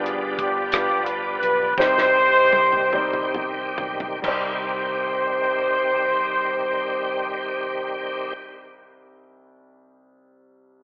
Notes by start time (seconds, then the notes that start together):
Already playing: G1 G2 F3 G3 B3 D4 F4 B4
0.04 G#4, closed hi-hat
0.39 B3 D4 G4, kick, closed hi-hat
0.72 G3 D4 F4 B4, cross-stick, closed hi-hat
1.05 B4, closed hi-hat
1.39 B1 B4, closed hi-hat
1.77 C2 C3 D#3 G3 C4 D#4 G4 C5, kick, snare
1.82 D#4 G4
1.98 snare
2.53 high tom
2.73 mid tom
2.93 G3 C4 D#4 C5, mid tom
3.13 mid tom
3.34 mid tom
3.78 B1, floor tom
4.00 floor tom
4.22 C2 D#3 G3 C4 G4 C5, kick, crash
4.26 D#4 C5